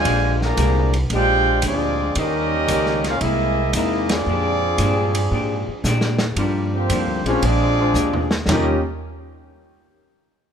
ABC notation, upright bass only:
X:1
M:4/4
L:1/8
Q:"Swing" 1/4=114
K:Bbmix
V:1 name="Upright bass" clef=bass
B,,,2 C,,2 B,,,2 D,,2 | E,,2 _D,,2 C,,2 =E,,2 | F,,2 G,,2 A,, z B,,2 | [K:Eb] G,,2 (3F,, D,, B,,, B,,,2 D,,2 |
E,, z6 z |]